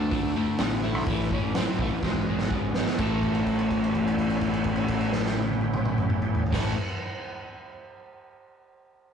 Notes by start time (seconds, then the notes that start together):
Already playing: D2 A3 C4 D4 E4 F#4
0.11 D3 A3, kick, open hi-hat
0.23 D2
0.36 D3 A3
0.58 A1 D3 B3, snare, open hi-hat
0.82 D3 A3 E4
0.95 B1, snare
1.06 A1 A2 E3 C#4 E4, kick, open hi-hat
1.10 B3 G4
1.20 snare
1.31 A2 E3 C#4, kick
1.44 A1
1.55 A2 F#3 C4, snare, open hi-hat
1.79 B1 A2 E3 A3, kick
2.03 E1 E2 B2 G#3 C4 D#4 G4 A4, kick, snare
2.15 G#1, kick
2.21 B3 D4 F#4 G#4
2.29 E2 B2
2.38 G#1, snare
2.51 E2 C#3, kick
2.74 G#1 E2 B2, snare
2.87 snare
2.97 A1 A2 E3 A3 B3 C#4 E4 G4, kick, crash
3.03 A3
3.23 kick, crash
3.35 crash
3.47 kick, crash
3.59 crash
3.71 kick, crash
3.84 crash
3.95 kick, crash
4.07 crash
4.18 kick, crash
4.30 crash
4.41 kick, crash
4.53 crash
4.64 kick, crash
4.76 crash
4.88 kick, crash
5.01 crash
5.12 snare
5.26 snare
5.37 high tom
5.49 high tom
5.61 high tom
5.74 mid tom
5.85 mid tom
5.98 mid tom
6.10 mid tom
6.22 mid tom
6.35 floor tom
6.46 floor tom
6.52 A1 A2 E3 A3 B3 C#4 E4 G4, kick, snare, crash
6.56 A3